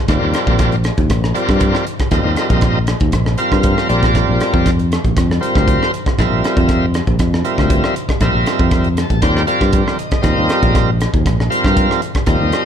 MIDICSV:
0, 0, Header, 1, 4, 480
1, 0, Start_track
1, 0, Key_signature, -3, "major"
1, 0, Tempo, 507614
1, 83, Time_signature, 4, 2, 24, 8
1, 11962, End_track
2, 0, Start_track
2, 0, Title_t, "Tonewheel organ"
2, 0, Program_c, 0, 16
2, 78, Note_on_c, 0, 55, 77
2, 82, Note_on_c, 0, 65, 70
2, 83, Note_on_c, 0, 60, 62
2, 85, Note_on_c, 0, 70, 62
2, 87, Note_on_c, 0, 74, 84
2, 716, Note_off_c, 0, 55, 0
2, 718, Note_off_c, 0, 60, 0
2, 718, Note_off_c, 0, 65, 0
2, 719, Note_off_c, 0, 70, 0
2, 720, Note_off_c, 0, 74, 0
2, 1270, Note_on_c, 0, 55, 80
2, 1270, Note_on_c, 0, 65, 71
2, 1273, Note_on_c, 0, 70, 77
2, 1274, Note_on_c, 0, 74, 90
2, 1275, Note_on_c, 0, 60, 78
2, 1750, Note_off_c, 0, 55, 0
2, 1750, Note_off_c, 0, 65, 0
2, 1752, Note_off_c, 0, 70, 0
2, 1752, Note_off_c, 0, 74, 0
2, 1753, Note_off_c, 0, 60, 0
2, 1998, Note_on_c, 0, 60, 64
2, 1999, Note_on_c, 0, 55, 74
2, 2000, Note_on_c, 0, 65, 70
2, 2002, Note_on_c, 0, 70, 65
2, 2005, Note_on_c, 0, 75, 77
2, 2635, Note_off_c, 0, 60, 0
2, 2636, Note_off_c, 0, 55, 0
2, 2637, Note_off_c, 0, 65, 0
2, 2637, Note_off_c, 0, 70, 0
2, 2639, Note_off_c, 0, 75, 0
2, 3193, Note_on_c, 0, 60, 80
2, 3197, Note_on_c, 0, 65, 78
2, 3198, Note_on_c, 0, 55, 87
2, 3200, Note_on_c, 0, 70, 75
2, 3200, Note_on_c, 0, 77, 83
2, 3666, Note_off_c, 0, 55, 0
2, 3667, Note_off_c, 0, 70, 0
2, 3670, Note_off_c, 0, 60, 0
2, 3670, Note_off_c, 0, 65, 0
2, 3675, Note_off_c, 0, 77, 0
2, 3677, Note_on_c, 0, 55, 77
2, 3678, Note_on_c, 0, 70, 74
2, 3680, Note_on_c, 0, 74, 90
2, 3681, Note_on_c, 0, 65, 70
2, 3682, Note_on_c, 0, 60, 76
2, 4449, Note_off_c, 0, 55, 0
2, 4449, Note_off_c, 0, 70, 0
2, 4450, Note_off_c, 0, 74, 0
2, 4451, Note_off_c, 0, 60, 0
2, 4451, Note_off_c, 0, 65, 0
2, 5112, Note_on_c, 0, 65, 73
2, 5113, Note_on_c, 0, 55, 74
2, 5113, Note_on_c, 0, 60, 74
2, 5117, Note_on_c, 0, 70, 78
2, 5118, Note_on_c, 0, 72, 90
2, 5592, Note_off_c, 0, 55, 0
2, 5592, Note_off_c, 0, 60, 0
2, 5592, Note_off_c, 0, 65, 0
2, 5594, Note_off_c, 0, 70, 0
2, 5595, Note_off_c, 0, 72, 0
2, 5850, Note_on_c, 0, 70, 62
2, 5852, Note_on_c, 0, 65, 64
2, 5855, Note_on_c, 0, 55, 71
2, 5855, Note_on_c, 0, 60, 68
2, 5857, Note_on_c, 0, 76, 82
2, 6482, Note_off_c, 0, 70, 0
2, 6484, Note_off_c, 0, 65, 0
2, 6485, Note_off_c, 0, 55, 0
2, 6485, Note_off_c, 0, 60, 0
2, 6486, Note_off_c, 0, 76, 0
2, 7039, Note_on_c, 0, 60, 80
2, 7041, Note_on_c, 0, 65, 81
2, 7042, Note_on_c, 0, 55, 82
2, 7042, Note_on_c, 0, 70, 77
2, 7043, Note_on_c, 0, 76, 86
2, 7515, Note_off_c, 0, 60, 0
2, 7516, Note_off_c, 0, 65, 0
2, 7517, Note_off_c, 0, 55, 0
2, 7517, Note_off_c, 0, 70, 0
2, 7517, Note_off_c, 0, 76, 0
2, 7769, Note_on_c, 0, 76, 75
2, 7770, Note_on_c, 0, 65, 68
2, 7770, Note_on_c, 0, 70, 64
2, 7771, Note_on_c, 0, 55, 75
2, 7771, Note_on_c, 0, 60, 66
2, 8402, Note_off_c, 0, 76, 0
2, 8403, Note_off_c, 0, 55, 0
2, 8403, Note_off_c, 0, 60, 0
2, 8403, Note_off_c, 0, 65, 0
2, 8403, Note_off_c, 0, 70, 0
2, 8485, Note_on_c, 0, 81, 59
2, 8707, Note_off_c, 0, 81, 0
2, 8715, Note_on_c, 0, 60, 73
2, 8716, Note_on_c, 0, 79, 63
2, 8718, Note_on_c, 0, 55, 79
2, 8721, Note_on_c, 0, 70, 72
2, 8722, Note_on_c, 0, 65, 71
2, 8725, Note_on_c, 0, 74, 84
2, 8912, Note_off_c, 0, 60, 0
2, 8914, Note_off_c, 0, 55, 0
2, 8915, Note_off_c, 0, 70, 0
2, 8916, Note_off_c, 0, 65, 0
2, 8917, Note_off_c, 0, 74, 0
2, 8942, Note_off_c, 0, 79, 0
2, 8955, Note_on_c, 0, 65, 73
2, 8955, Note_on_c, 0, 77, 72
2, 8959, Note_on_c, 0, 55, 78
2, 8959, Note_on_c, 0, 60, 76
2, 8959, Note_on_c, 0, 70, 74
2, 8963, Note_on_c, 0, 74, 93
2, 9181, Note_off_c, 0, 77, 0
2, 9187, Note_off_c, 0, 74, 0
2, 9199, Note_on_c, 0, 74, 63
2, 9423, Note_off_c, 0, 74, 0
2, 9434, Note_off_c, 0, 65, 0
2, 9436, Note_off_c, 0, 55, 0
2, 9436, Note_off_c, 0, 60, 0
2, 9436, Note_off_c, 0, 70, 0
2, 9436, Note_on_c, 0, 75, 63
2, 9657, Note_off_c, 0, 75, 0
2, 9661, Note_on_c, 0, 60, 69
2, 9666, Note_on_c, 0, 55, 70
2, 9668, Note_on_c, 0, 75, 88
2, 9669, Note_on_c, 0, 65, 64
2, 9672, Note_on_c, 0, 70, 71
2, 10309, Note_off_c, 0, 60, 0
2, 10311, Note_off_c, 0, 55, 0
2, 10312, Note_off_c, 0, 75, 0
2, 10313, Note_off_c, 0, 65, 0
2, 10314, Note_off_c, 0, 70, 0
2, 10876, Note_on_c, 0, 55, 83
2, 10876, Note_on_c, 0, 60, 77
2, 10878, Note_on_c, 0, 65, 75
2, 10878, Note_on_c, 0, 70, 73
2, 10880, Note_on_c, 0, 77, 91
2, 11355, Note_off_c, 0, 55, 0
2, 11355, Note_off_c, 0, 60, 0
2, 11356, Note_off_c, 0, 65, 0
2, 11356, Note_off_c, 0, 70, 0
2, 11357, Note_off_c, 0, 77, 0
2, 11596, Note_on_c, 0, 55, 73
2, 11597, Note_on_c, 0, 60, 71
2, 11597, Note_on_c, 0, 70, 67
2, 11597, Note_on_c, 0, 75, 85
2, 11598, Note_on_c, 0, 65, 62
2, 11962, Note_off_c, 0, 55, 0
2, 11962, Note_off_c, 0, 60, 0
2, 11962, Note_off_c, 0, 65, 0
2, 11962, Note_off_c, 0, 70, 0
2, 11962, Note_off_c, 0, 75, 0
2, 11962, End_track
3, 0, Start_track
3, 0, Title_t, "Fretless electric bass"
3, 0, Program_c, 1, 35
3, 80, Note_on_c, 1, 39, 90
3, 186, Note_off_c, 1, 39, 0
3, 213, Note_on_c, 1, 39, 77
3, 308, Note_off_c, 1, 39, 0
3, 441, Note_on_c, 1, 34, 84
3, 847, Note_off_c, 1, 34, 0
3, 924, Note_on_c, 1, 39, 75
3, 1022, Note_off_c, 1, 39, 0
3, 1043, Note_on_c, 1, 34, 87
3, 1244, Note_off_c, 1, 34, 0
3, 1409, Note_on_c, 1, 43, 70
3, 1610, Note_off_c, 1, 43, 0
3, 1999, Note_on_c, 1, 39, 90
3, 2105, Note_off_c, 1, 39, 0
3, 2120, Note_on_c, 1, 39, 80
3, 2219, Note_off_c, 1, 39, 0
3, 2364, Note_on_c, 1, 34, 88
3, 2769, Note_off_c, 1, 34, 0
3, 2844, Note_on_c, 1, 39, 73
3, 2941, Note_off_c, 1, 39, 0
3, 2964, Note_on_c, 1, 34, 82
3, 3165, Note_off_c, 1, 34, 0
3, 3330, Note_on_c, 1, 43, 74
3, 3530, Note_off_c, 1, 43, 0
3, 3684, Note_on_c, 1, 34, 92
3, 3990, Note_off_c, 1, 34, 0
3, 4058, Note_on_c, 1, 34, 78
3, 4150, Note_off_c, 1, 34, 0
3, 4290, Note_on_c, 1, 41, 87
3, 4693, Note_off_c, 1, 41, 0
3, 4770, Note_on_c, 1, 34, 73
3, 4865, Note_off_c, 1, 34, 0
3, 4887, Note_on_c, 1, 41, 76
3, 5087, Note_off_c, 1, 41, 0
3, 5252, Note_on_c, 1, 38, 71
3, 5452, Note_off_c, 1, 38, 0
3, 5850, Note_on_c, 1, 34, 90
3, 5951, Note_off_c, 1, 34, 0
3, 5960, Note_on_c, 1, 34, 72
3, 6059, Note_off_c, 1, 34, 0
3, 6213, Note_on_c, 1, 41, 85
3, 6615, Note_off_c, 1, 41, 0
3, 6688, Note_on_c, 1, 34, 75
3, 6784, Note_off_c, 1, 34, 0
3, 6802, Note_on_c, 1, 41, 78
3, 7004, Note_off_c, 1, 41, 0
3, 7174, Note_on_c, 1, 38, 68
3, 7373, Note_off_c, 1, 38, 0
3, 7763, Note_on_c, 1, 34, 85
3, 7868, Note_off_c, 1, 34, 0
3, 7881, Note_on_c, 1, 34, 77
3, 7980, Note_off_c, 1, 34, 0
3, 8129, Note_on_c, 1, 41, 92
3, 8533, Note_off_c, 1, 41, 0
3, 8610, Note_on_c, 1, 34, 74
3, 8706, Note_off_c, 1, 34, 0
3, 8723, Note_on_c, 1, 39, 76
3, 8925, Note_off_c, 1, 39, 0
3, 9086, Note_on_c, 1, 43, 71
3, 9288, Note_off_c, 1, 43, 0
3, 9680, Note_on_c, 1, 39, 90
3, 9786, Note_off_c, 1, 39, 0
3, 9811, Note_on_c, 1, 39, 85
3, 9906, Note_off_c, 1, 39, 0
3, 10047, Note_on_c, 1, 34, 89
3, 10452, Note_off_c, 1, 34, 0
3, 10532, Note_on_c, 1, 39, 74
3, 10627, Note_off_c, 1, 39, 0
3, 10649, Note_on_c, 1, 34, 83
3, 10849, Note_off_c, 1, 34, 0
3, 11013, Note_on_c, 1, 43, 74
3, 11213, Note_off_c, 1, 43, 0
3, 11604, Note_on_c, 1, 39, 90
3, 11709, Note_off_c, 1, 39, 0
3, 11734, Note_on_c, 1, 39, 80
3, 11829, Note_off_c, 1, 39, 0
3, 11962, End_track
4, 0, Start_track
4, 0, Title_t, "Drums"
4, 77, Note_on_c, 9, 42, 77
4, 81, Note_on_c, 9, 36, 78
4, 88, Note_on_c, 9, 37, 75
4, 172, Note_off_c, 9, 42, 0
4, 175, Note_off_c, 9, 36, 0
4, 182, Note_off_c, 9, 37, 0
4, 318, Note_on_c, 9, 42, 58
4, 329, Note_on_c, 9, 37, 83
4, 413, Note_off_c, 9, 42, 0
4, 423, Note_off_c, 9, 37, 0
4, 445, Note_on_c, 9, 36, 80
4, 539, Note_off_c, 9, 36, 0
4, 556, Note_on_c, 9, 42, 76
4, 560, Note_on_c, 9, 36, 93
4, 566, Note_on_c, 9, 37, 71
4, 650, Note_off_c, 9, 42, 0
4, 655, Note_off_c, 9, 36, 0
4, 661, Note_off_c, 9, 37, 0
4, 682, Note_on_c, 9, 42, 34
4, 776, Note_off_c, 9, 42, 0
4, 793, Note_on_c, 9, 42, 54
4, 803, Note_on_c, 9, 37, 82
4, 888, Note_off_c, 9, 42, 0
4, 898, Note_off_c, 9, 37, 0
4, 923, Note_on_c, 9, 42, 33
4, 925, Note_on_c, 9, 36, 70
4, 1017, Note_off_c, 9, 42, 0
4, 1020, Note_off_c, 9, 36, 0
4, 1038, Note_on_c, 9, 42, 75
4, 1040, Note_on_c, 9, 36, 82
4, 1048, Note_on_c, 9, 37, 84
4, 1132, Note_off_c, 9, 42, 0
4, 1135, Note_off_c, 9, 36, 0
4, 1143, Note_off_c, 9, 37, 0
4, 1171, Note_on_c, 9, 37, 75
4, 1266, Note_off_c, 9, 37, 0
4, 1280, Note_on_c, 9, 42, 51
4, 1375, Note_off_c, 9, 42, 0
4, 1406, Note_on_c, 9, 36, 77
4, 1412, Note_on_c, 9, 37, 74
4, 1500, Note_off_c, 9, 36, 0
4, 1507, Note_off_c, 9, 37, 0
4, 1517, Note_on_c, 9, 42, 79
4, 1521, Note_on_c, 9, 36, 103
4, 1611, Note_off_c, 9, 42, 0
4, 1616, Note_off_c, 9, 36, 0
4, 1653, Note_on_c, 9, 37, 71
4, 1748, Note_off_c, 9, 37, 0
4, 1764, Note_on_c, 9, 42, 52
4, 1858, Note_off_c, 9, 42, 0
4, 1885, Note_on_c, 9, 42, 31
4, 1887, Note_on_c, 9, 36, 75
4, 1895, Note_on_c, 9, 37, 68
4, 1979, Note_off_c, 9, 42, 0
4, 1982, Note_off_c, 9, 36, 0
4, 1990, Note_off_c, 9, 37, 0
4, 1995, Note_on_c, 9, 42, 67
4, 2002, Note_on_c, 9, 36, 80
4, 2006, Note_on_c, 9, 37, 71
4, 2090, Note_off_c, 9, 42, 0
4, 2096, Note_off_c, 9, 36, 0
4, 2100, Note_off_c, 9, 37, 0
4, 2234, Note_on_c, 9, 42, 52
4, 2244, Note_on_c, 9, 37, 76
4, 2328, Note_off_c, 9, 42, 0
4, 2339, Note_off_c, 9, 37, 0
4, 2362, Note_on_c, 9, 42, 36
4, 2365, Note_on_c, 9, 36, 82
4, 2457, Note_off_c, 9, 42, 0
4, 2460, Note_off_c, 9, 36, 0
4, 2470, Note_on_c, 9, 42, 68
4, 2479, Note_on_c, 9, 36, 97
4, 2480, Note_on_c, 9, 37, 67
4, 2564, Note_off_c, 9, 42, 0
4, 2574, Note_off_c, 9, 36, 0
4, 2575, Note_off_c, 9, 37, 0
4, 2713, Note_on_c, 9, 42, 57
4, 2723, Note_on_c, 9, 37, 79
4, 2807, Note_off_c, 9, 42, 0
4, 2818, Note_off_c, 9, 37, 0
4, 2837, Note_on_c, 9, 42, 30
4, 2844, Note_on_c, 9, 36, 74
4, 2931, Note_off_c, 9, 42, 0
4, 2939, Note_off_c, 9, 36, 0
4, 2952, Note_on_c, 9, 42, 79
4, 2960, Note_on_c, 9, 36, 77
4, 2963, Note_on_c, 9, 37, 78
4, 3047, Note_off_c, 9, 42, 0
4, 3055, Note_off_c, 9, 36, 0
4, 3057, Note_off_c, 9, 37, 0
4, 3086, Note_on_c, 9, 37, 73
4, 3181, Note_off_c, 9, 37, 0
4, 3192, Note_on_c, 9, 42, 54
4, 3287, Note_off_c, 9, 42, 0
4, 3326, Note_on_c, 9, 36, 69
4, 3334, Note_on_c, 9, 37, 74
4, 3421, Note_off_c, 9, 36, 0
4, 3428, Note_off_c, 9, 37, 0
4, 3435, Note_on_c, 9, 42, 83
4, 3441, Note_on_c, 9, 36, 108
4, 3530, Note_off_c, 9, 42, 0
4, 3536, Note_off_c, 9, 36, 0
4, 3574, Note_on_c, 9, 37, 73
4, 3669, Note_off_c, 9, 37, 0
4, 3683, Note_on_c, 9, 42, 52
4, 3777, Note_off_c, 9, 42, 0
4, 3808, Note_on_c, 9, 36, 78
4, 3812, Note_on_c, 9, 42, 38
4, 3822, Note_on_c, 9, 37, 73
4, 3903, Note_off_c, 9, 36, 0
4, 3906, Note_off_c, 9, 42, 0
4, 3916, Note_off_c, 9, 37, 0
4, 3924, Note_on_c, 9, 36, 74
4, 3925, Note_on_c, 9, 42, 77
4, 3935, Note_on_c, 9, 37, 71
4, 4018, Note_off_c, 9, 36, 0
4, 4019, Note_off_c, 9, 42, 0
4, 4029, Note_off_c, 9, 37, 0
4, 4164, Note_on_c, 9, 42, 61
4, 4175, Note_on_c, 9, 37, 80
4, 4259, Note_off_c, 9, 42, 0
4, 4269, Note_off_c, 9, 37, 0
4, 4290, Note_on_c, 9, 36, 75
4, 4384, Note_off_c, 9, 36, 0
4, 4406, Note_on_c, 9, 36, 90
4, 4407, Note_on_c, 9, 42, 78
4, 4417, Note_on_c, 9, 37, 74
4, 4500, Note_off_c, 9, 36, 0
4, 4502, Note_off_c, 9, 42, 0
4, 4512, Note_off_c, 9, 37, 0
4, 4533, Note_on_c, 9, 42, 35
4, 4628, Note_off_c, 9, 42, 0
4, 4650, Note_on_c, 9, 42, 57
4, 4661, Note_on_c, 9, 37, 74
4, 4745, Note_off_c, 9, 42, 0
4, 4755, Note_off_c, 9, 37, 0
4, 4771, Note_on_c, 9, 36, 70
4, 4773, Note_on_c, 9, 42, 33
4, 4865, Note_off_c, 9, 36, 0
4, 4868, Note_off_c, 9, 42, 0
4, 4885, Note_on_c, 9, 36, 79
4, 4886, Note_on_c, 9, 42, 79
4, 4897, Note_on_c, 9, 37, 85
4, 4980, Note_off_c, 9, 36, 0
4, 4981, Note_off_c, 9, 42, 0
4, 4991, Note_off_c, 9, 37, 0
4, 5025, Note_on_c, 9, 37, 74
4, 5119, Note_off_c, 9, 37, 0
4, 5131, Note_on_c, 9, 42, 54
4, 5226, Note_off_c, 9, 42, 0
4, 5252, Note_on_c, 9, 36, 76
4, 5265, Note_on_c, 9, 37, 72
4, 5347, Note_off_c, 9, 36, 0
4, 5360, Note_off_c, 9, 37, 0
4, 5368, Note_on_c, 9, 36, 108
4, 5375, Note_on_c, 9, 42, 79
4, 5462, Note_off_c, 9, 36, 0
4, 5469, Note_off_c, 9, 42, 0
4, 5510, Note_on_c, 9, 37, 70
4, 5605, Note_off_c, 9, 37, 0
4, 5615, Note_on_c, 9, 42, 53
4, 5709, Note_off_c, 9, 42, 0
4, 5733, Note_on_c, 9, 36, 75
4, 5735, Note_on_c, 9, 42, 30
4, 5746, Note_on_c, 9, 37, 72
4, 5828, Note_off_c, 9, 36, 0
4, 5830, Note_off_c, 9, 42, 0
4, 5840, Note_off_c, 9, 37, 0
4, 5849, Note_on_c, 9, 36, 74
4, 5854, Note_on_c, 9, 42, 66
4, 5864, Note_on_c, 9, 37, 81
4, 5944, Note_off_c, 9, 36, 0
4, 5948, Note_off_c, 9, 42, 0
4, 5959, Note_off_c, 9, 37, 0
4, 6093, Note_on_c, 9, 42, 54
4, 6103, Note_on_c, 9, 37, 72
4, 6187, Note_off_c, 9, 42, 0
4, 6198, Note_off_c, 9, 37, 0
4, 6211, Note_on_c, 9, 36, 83
4, 6214, Note_on_c, 9, 42, 33
4, 6305, Note_off_c, 9, 36, 0
4, 6308, Note_off_c, 9, 42, 0
4, 6323, Note_on_c, 9, 42, 66
4, 6325, Note_on_c, 9, 36, 90
4, 6334, Note_on_c, 9, 37, 68
4, 6418, Note_off_c, 9, 42, 0
4, 6419, Note_off_c, 9, 36, 0
4, 6428, Note_off_c, 9, 37, 0
4, 6563, Note_on_c, 9, 42, 52
4, 6574, Note_on_c, 9, 37, 80
4, 6658, Note_off_c, 9, 42, 0
4, 6668, Note_off_c, 9, 37, 0
4, 6687, Note_on_c, 9, 42, 31
4, 6689, Note_on_c, 9, 36, 67
4, 6781, Note_off_c, 9, 42, 0
4, 6783, Note_off_c, 9, 36, 0
4, 6799, Note_on_c, 9, 42, 83
4, 6803, Note_on_c, 9, 36, 77
4, 6809, Note_on_c, 9, 37, 84
4, 6893, Note_off_c, 9, 42, 0
4, 6897, Note_off_c, 9, 36, 0
4, 6904, Note_off_c, 9, 37, 0
4, 6941, Note_on_c, 9, 37, 80
4, 7036, Note_off_c, 9, 37, 0
4, 7042, Note_on_c, 9, 42, 52
4, 7137, Note_off_c, 9, 42, 0
4, 7169, Note_on_c, 9, 36, 67
4, 7180, Note_on_c, 9, 37, 69
4, 7263, Note_off_c, 9, 36, 0
4, 7275, Note_off_c, 9, 37, 0
4, 7281, Note_on_c, 9, 42, 81
4, 7283, Note_on_c, 9, 36, 104
4, 7376, Note_off_c, 9, 42, 0
4, 7377, Note_off_c, 9, 36, 0
4, 7413, Note_on_c, 9, 37, 78
4, 7507, Note_off_c, 9, 37, 0
4, 7527, Note_on_c, 9, 42, 60
4, 7621, Note_off_c, 9, 42, 0
4, 7648, Note_on_c, 9, 36, 70
4, 7649, Note_on_c, 9, 42, 34
4, 7660, Note_on_c, 9, 37, 81
4, 7743, Note_off_c, 9, 36, 0
4, 7744, Note_off_c, 9, 42, 0
4, 7754, Note_off_c, 9, 37, 0
4, 7759, Note_on_c, 9, 42, 80
4, 7761, Note_on_c, 9, 36, 76
4, 7769, Note_on_c, 9, 37, 76
4, 7853, Note_off_c, 9, 42, 0
4, 7856, Note_off_c, 9, 36, 0
4, 7864, Note_off_c, 9, 37, 0
4, 8002, Note_on_c, 9, 42, 60
4, 8013, Note_on_c, 9, 37, 76
4, 8097, Note_off_c, 9, 42, 0
4, 8107, Note_off_c, 9, 37, 0
4, 8126, Note_on_c, 9, 36, 79
4, 8221, Note_off_c, 9, 36, 0
4, 8238, Note_on_c, 9, 42, 75
4, 8240, Note_on_c, 9, 36, 100
4, 8248, Note_on_c, 9, 37, 75
4, 8332, Note_off_c, 9, 42, 0
4, 8335, Note_off_c, 9, 36, 0
4, 8343, Note_off_c, 9, 37, 0
4, 8362, Note_on_c, 9, 42, 35
4, 8456, Note_off_c, 9, 42, 0
4, 8482, Note_on_c, 9, 42, 61
4, 8492, Note_on_c, 9, 37, 78
4, 8577, Note_off_c, 9, 42, 0
4, 8587, Note_off_c, 9, 37, 0
4, 8606, Note_on_c, 9, 42, 32
4, 8607, Note_on_c, 9, 36, 75
4, 8701, Note_off_c, 9, 36, 0
4, 8701, Note_off_c, 9, 42, 0
4, 8718, Note_on_c, 9, 42, 84
4, 8721, Note_on_c, 9, 36, 85
4, 8728, Note_on_c, 9, 37, 85
4, 8812, Note_off_c, 9, 42, 0
4, 8816, Note_off_c, 9, 36, 0
4, 8823, Note_off_c, 9, 37, 0
4, 8858, Note_on_c, 9, 37, 69
4, 8953, Note_off_c, 9, 37, 0
4, 8959, Note_on_c, 9, 42, 50
4, 9053, Note_off_c, 9, 42, 0
4, 9088, Note_on_c, 9, 36, 74
4, 9097, Note_on_c, 9, 37, 73
4, 9182, Note_off_c, 9, 36, 0
4, 9192, Note_off_c, 9, 37, 0
4, 9196, Note_on_c, 9, 42, 79
4, 9202, Note_on_c, 9, 36, 109
4, 9290, Note_off_c, 9, 42, 0
4, 9297, Note_off_c, 9, 36, 0
4, 9340, Note_on_c, 9, 37, 75
4, 9434, Note_off_c, 9, 37, 0
4, 9445, Note_on_c, 9, 42, 58
4, 9539, Note_off_c, 9, 42, 0
4, 9562, Note_on_c, 9, 42, 32
4, 9567, Note_on_c, 9, 36, 77
4, 9573, Note_on_c, 9, 37, 80
4, 9657, Note_off_c, 9, 42, 0
4, 9662, Note_off_c, 9, 36, 0
4, 9667, Note_off_c, 9, 37, 0
4, 9677, Note_on_c, 9, 42, 71
4, 9682, Note_on_c, 9, 36, 78
4, 9687, Note_on_c, 9, 37, 76
4, 9772, Note_off_c, 9, 42, 0
4, 9776, Note_off_c, 9, 36, 0
4, 9782, Note_off_c, 9, 37, 0
4, 9921, Note_on_c, 9, 42, 56
4, 9931, Note_on_c, 9, 37, 80
4, 10015, Note_off_c, 9, 42, 0
4, 10026, Note_off_c, 9, 37, 0
4, 10048, Note_on_c, 9, 42, 34
4, 10049, Note_on_c, 9, 36, 78
4, 10143, Note_off_c, 9, 42, 0
4, 10144, Note_off_c, 9, 36, 0
4, 10165, Note_on_c, 9, 36, 92
4, 10165, Note_on_c, 9, 42, 70
4, 10176, Note_on_c, 9, 37, 74
4, 10260, Note_off_c, 9, 36, 0
4, 10260, Note_off_c, 9, 42, 0
4, 10270, Note_off_c, 9, 37, 0
4, 10407, Note_on_c, 9, 42, 57
4, 10417, Note_on_c, 9, 37, 79
4, 10501, Note_off_c, 9, 42, 0
4, 10512, Note_off_c, 9, 37, 0
4, 10531, Note_on_c, 9, 36, 79
4, 10532, Note_on_c, 9, 42, 34
4, 10625, Note_off_c, 9, 36, 0
4, 10627, Note_off_c, 9, 42, 0
4, 10645, Note_on_c, 9, 36, 87
4, 10647, Note_on_c, 9, 42, 73
4, 10657, Note_on_c, 9, 37, 81
4, 10740, Note_off_c, 9, 36, 0
4, 10741, Note_off_c, 9, 42, 0
4, 10752, Note_off_c, 9, 37, 0
4, 10782, Note_on_c, 9, 37, 74
4, 10877, Note_off_c, 9, 37, 0
4, 10892, Note_on_c, 9, 42, 56
4, 10986, Note_off_c, 9, 42, 0
4, 11011, Note_on_c, 9, 36, 79
4, 11025, Note_on_c, 9, 37, 79
4, 11106, Note_off_c, 9, 36, 0
4, 11120, Note_off_c, 9, 37, 0
4, 11127, Note_on_c, 9, 36, 111
4, 11129, Note_on_c, 9, 42, 75
4, 11222, Note_off_c, 9, 36, 0
4, 11223, Note_off_c, 9, 42, 0
4, 11264, Note_on_c, 9, 37, 71
4, 11358, Note_off_c, 9, 37, 0
4, 11365, Note_on_c, 9, 42, 54
4, 11460, Note_off_c, 9, 42, 0
4, 11487, Note_on_c, 9, 42, 37
4, 11488, Note_on_c, 9, 36, 79
4, 11497, Note_on_c, 9, 37, 73
4, 11581, Note_off_c, 9, 42, 0
4, 11583, Note_off_c, 9, 36, 0
4, 11592, Note_off_c, 9, 37, 0
4, 11597, Note_on_c, 9, 42, 81
4, 11602, Note_on_c, 9, 36, 79
4, 11608, Note_on_c, 9, 37, 81
4, 11692, Note_off_c, 9, 42, 0
4, 11697, Note_off_c, 9, 36, 0
4, 11702, Note_off_c, 9, 37, 0
4, 11842, Note_on_c, 9, 42, 57
4, 11853, Note_on_c, 9, 37, 81
4, 11937, Note_off_c, 9, 42, 0
4, 11947, Note_off_c, 9, 37, 0
4, 11962, End_track
0, 0, End_of_file